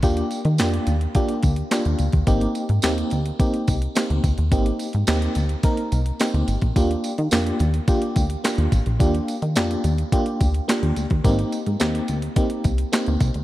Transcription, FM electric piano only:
\new Staff \with { instrumentName = "FM electric piano" } { \time 4/4 \key ees \lydian \tempo 4 = 107 <bes d' f' g'>8 r8 <bes d' f' g'>8 r8 <bes d' f' g'>8 r8 <bes d' f' g'>8 r8 | <bes c' ees' g'>8 r8 <bes c' ees' g'>8 r8 <bes c' ees' g'>8 r8 <bes c' ees' g'>8 r8 | <bes c' ees' g'>8 r8 <bes c' ees' g'>8 r8 <bes c' ees' bes'>8 r8 <bes c' ees' g'>8 r8 | <bes d' f' g'>8 r8 <bes d' f' g'>8 r8 <bes d' f' g'>8 r8 <bes d' f' g'>8 r8 |
<bes d' f' g'>8 r8 <bes d' f' g'>8 r8 <bes d' f' g'>8 r8 <bes d' f' g'>8 r8 | <bes c' ees' g'>8 r8 <bes c' ees' g'>8 r8 <bes c' ees' g'>8 r8 <bes c' ees' g'>8 r8 | }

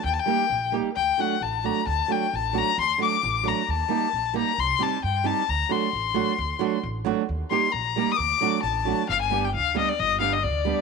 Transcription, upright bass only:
\new Staff \with { instrumentName = "Upright bass" } { \clef bass \time 2/4 \tempo 4 = 133 ees,8 r8 bes,,4 | d,8 r8 a,,4 | d,8 r8 a,,4 | d,8 r8 a,,4 |
ees,8 r8 bes,,4 | c,8 r8 g,4 | d,8 r8 a,,4 | d,8 r8 a,,4 |
ees,8 r8 bes,,4 | d,8 r8 a,,4 | g,,4 d,4 | g,,4 d,4 | }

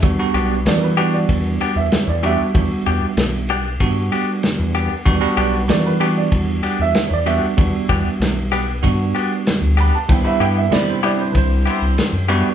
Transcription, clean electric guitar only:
\new Staff \with { instrumentName = "Clean electric guitar" } { \time 4/4 \key e \minor \tempo 4 = 95 r8 <b d' g'>8 r8 <b d' g'>8 r8 <b d' g'>8 r8 <b d' g'>8 | r8 <b d' g'>8 r8 <b d' g'>8 r8 <b d' g'>8 r8 <b d' g'>8 | r8 <b d' g'>8 r8 <b d' g'>8 r8 <b d' g'>8 r8 <b d' g'>8 | r8 <b d' g'>8 r8 <b d' g'>8 r8 <b d' g'>8 r8 <b d' g'>8 |
r8 <g b e' g'>8 r8 <g b e' g'>8 r8 <g b e' g'>8 r8 <g b e' g'>8 | }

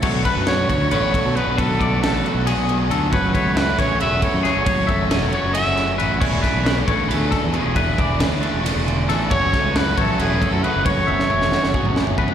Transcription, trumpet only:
\new Staff \with { instrumentName = "Trumpet" } { \time 7/8 \key fis \minor \tempo 4 = 136 r8 b'8 cis''4 cis''4 b'8 | a'4 a'4 r4. | b'8 cis''8 b'8 cis''8 e''8 cis''8 cis''8~ | cis''4 r8 cis''8 e''4 r8 |
r2. r8 | r2. r8 | cis''4 b'8 a'8 gis'8. a'16 b'8 | cis''2. r8 | }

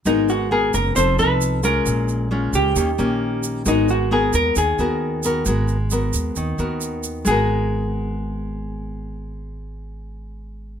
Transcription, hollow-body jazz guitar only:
\new Staff \with { instrumentName = "Hollow-body jazz guitar" } { \time 4/4 \key gis \minor \tempo 4 = 133 dis'8 fis'8 gis'8 ais'8 c''8 b'4 ais'8~ | ais'4 r8 g'2 r8 | dis'8 fis'8 gis'8 ais'8 gis'2~ | gis'2. r4 |
gis'1~ | gis'1 | }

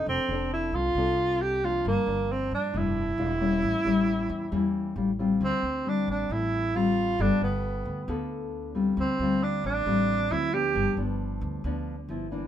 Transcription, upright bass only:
\new Staff \with { instrumentName = "Upright bass" } { \clef bass \time 4/4 \key d \minor \tempo 4 = 135 f,,16 r16 f,,4 c,8 c,2 | g,,16 r16 g,,4 g,8 f,,4 e,,4 | a,,16 r16 a,,4 e,8 e,4 a,,4 | d,16 r16 d,4 a,,8 a,,2 |
g,,16 r16 g,,4 d,8 d,2 | d,16 r16 d,4 a,,8 a,,4 d,4 | g,,16 r16 g,,4 d,8 d,4 g,,4 | }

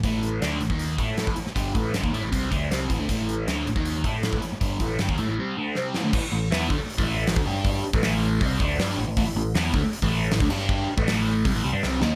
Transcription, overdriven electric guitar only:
\new Staff \with { instrumentName = "Overdriven electric guitar" } { \clef bass \time 4/4 \key g \lydian \tempo 4 = 158 <a, e a>4 <d a d'>8 <a, e>16 <dis bes dis'>8. <a e' a'>8. <a, e>16 r8 | <g, d g>8 <a, e a>8 <g, d>16 <dis bes>16 <a e'>16 <a, e>16 <c g c'>8 <d a d'>8 <c g c'>8 <a, e>16 <d a>16 | <a, e a>4 <d a d'>8 <a, e>16 <dis bes dis'>8. <a e' a'>8. <a, e>16 r8 | <g, d g>8 <a, e a>8 <g, d>16 <dis bes>16 <a e'>16 <a, e>16 <c g c'>8 <d a d'>8 <c g c'>8 <a, e>16 <d a>16 |
<a, e>16 r16 <a, e>8 <e b e'>8 <d a>16 r8 <a, e a>8. <a, e>16 <d a>16 <g d' g'>8~ | <g d' g'>8 r16 <a, e a>4~ <a, e a>16 <c g c'>8 <d a d'>8 <g d' g'>8 <a, e>16 <a, e>16 | <a, e>16 r16 <a, e>8 <e b e'>8 <d a>16 r8 <a, e a>8. <a, e>16 <d a>16 <g d' g'>8~ | <g d' g'>8 r16 <a, e a>4~ <a, e a>16 <c g>16 <a, e>16 <c g>16 <g d'>16 <c g c'>8 <dis bes dis'>8 | }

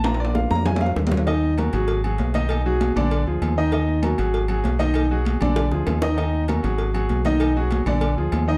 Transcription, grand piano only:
\new Staff \with { instrumentName = "Grand piano" } { \time 4/4 \key ees \minor \tempo 4 = 196 << { bes''8 d''8 f''8 bes''8 aes''8 <fes'' f''>8 r4 | <ees ees' ees''>4 <ges ges' bes'>8 <ges ges' aes'>4 <ges ges' aes'>4 <ees ees' ees''>8~ | <ees ees' ees''>8 <fis fis' gis'>4 <d d' d''>4 <f f' aes'>4 <ees ees' ees''>8 | <ees ees' ees''>4 <ges ges' bes'>8 <ges ges' aes'>4 <ges ges' aes'>4 <ees ees' ees''>8~ |
<ees ees' ees''>8 <fis fis' gis'>4 <d d' d''>4 <f f' aes'>4 <ees ees' ees''>8 | <ees ees' ees''>4 <ges ges' bes'>8 <ges ges' aes'>4 <ges ges' aes'>4 <ees ees' ees''>8~ | <ees ees' ees''>8 <fis fis' gis'>4 <d d' d''>4 <f f' aes'>4 <ees ees' ees''>8 | } \\ { <bes d' f'>1 | r1 | r1 | r1 |
r1 | r1 | r1 | } >> }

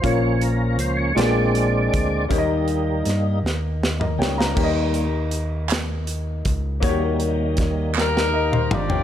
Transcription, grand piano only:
<<
  \new Staff \with { instrumentName = "Grand piano" } { \time 6/8 \key ees \mixolydian \tempo 4. = 53 << { r2. | r2 r16 <bes' ees''>16 <des'' g''>16 <f'' bes''>16~ | <f'' bes''>16 r2 r8. | r2 <bes' ees''>16 <c'' f''>8 <des'' g''>16 | } \\ { <bes des' f' des''>4. <bes f' aes' d''>4. | <bes ees' g' des'' ees''>2. | <bes ees' g' des'' ees''>2. | <bes ees' ges' g' des''>2. | } >> }
  \new Staff \with { instrumentName = "Grand piano" } { \clef bass \time 6/8 \key ees \mixolydian bes,4. bes,4. | ees4. r4. | ees4. r4. | ees4. r4. | }
>>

